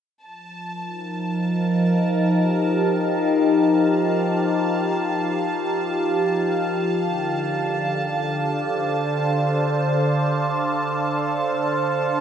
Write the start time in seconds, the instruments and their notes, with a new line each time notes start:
0.23 ambient pad F3, violin section A5
0.62 ambient pad A#4
0.80 ambient pad D#4 F5
1.69 ambient pad G4
6.73 ambient pad D3
7.20 ambient pad D4
7.31 ambient pad A4
8.36 ambient pad C5